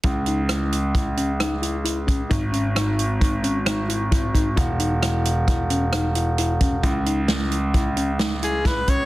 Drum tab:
HH |xxxxxxxxxx|xxxxxxxxxx|xxxxxxxxxx|xxxxxxxxxx|
SD |--r---r---|--r---r---|--r---r---|--o---o-o-|
BD |o---o----o|o---o---oo|o---o----o|o---o---oo|